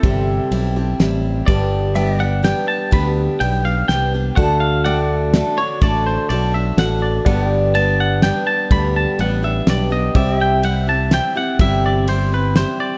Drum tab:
RD |x-x-x-|x-x-x-|x-x-x-|x-x-x-|
SD |----o-|----o-|----o-|----o-|
BD |o-----|o-----|o-----|o-----|

RD |x-x-x-|x-x-x-|x-x-x-|x-x-x-|
SD |----o-|----o-|----o-|----o-|
BD |o-----|o-----|o-----|o-----|

RD |x-x-x-|
SD |----o-|
BD |o-----|